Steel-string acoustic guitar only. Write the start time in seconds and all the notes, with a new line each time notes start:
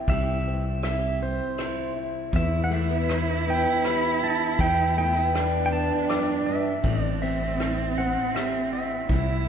Already playing: E3 E4 G4
0.10 C3
0.47 C4
0.85 E4
1.22 C4
1.58 E4
1.96 E4
2.34 E2
2.70 A3
2.90 B3
3.09 B3
3.28 D4
3.47 B3
3.86 G4
4.22 D4
4.60 E2
4.97 A3
5.16 B3
5.36 D4
5.72 B3
6.09 F#2
6.46 G2
6.84 A2
7.23 C4
7.60 E4
7.99 C4
8.35 G4
8.72 E4
9.10 C3